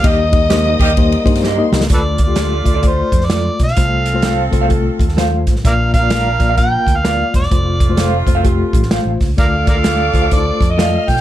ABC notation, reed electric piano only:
X:1
M:4/4
L:1/16
Q:"Swing" 1/4=128
K:Dphr
V:1 name="Reed electric piano"
[B,EGe] z [B,EGe] z [B,EGc]3 z [B,EGc] z [B,EGc]2 z [B,EGe]2 z | [A,Fd]2 z [A,FG]2 z [A,Fd] z [A,Fd]3 z [A,Fd]3 z | [A,Fc]2 z [A,Fc]2 z [A,Fc] z [A,FA]3 z [A,Fc]3 z | [B,Fd]2 z [B,Fd]2 z [B,Fd] z [B,Ff]3 z [B,Fd]3 z |
[A,Fc]2 z [A,Fc]2 z [A,Fc] z [A,FG]3 z [A,Fc]3 z | [A,Fd]2 z [A,Ff]2 z [A,Fc] z [A,EFc]3 z [A,FA]3 z |]